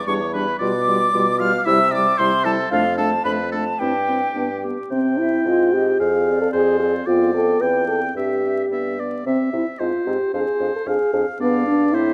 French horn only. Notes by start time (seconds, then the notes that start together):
0.07 G3
0.34 G3
0.61 G3
0.88 G3
1.14 G3
1.41 G3
1.67 G3
1.94 G3
2.20 G3
2.46 G3
2.73 A3
3.00 A3
3.27 A3
3.54 A3
3.81 C4
4.09 C4
4.36 B3
4.65 B3
4.92 C4
5.19 E4
5.47 F4
5.73 G4
6.00 G#4
6.42 A4
6.54 G#4
6.79 G#4
7.07 F4
7.34 A4
7.61 B4
7.88 A4
8.16 G4
9.26 C4
9.54 E4
9.81 F4
10.07 G4
10.34 G#4
10.76 A4
10.87 G#4
11.14 G#4
11.40 B3
11.68 D4
11.94 E4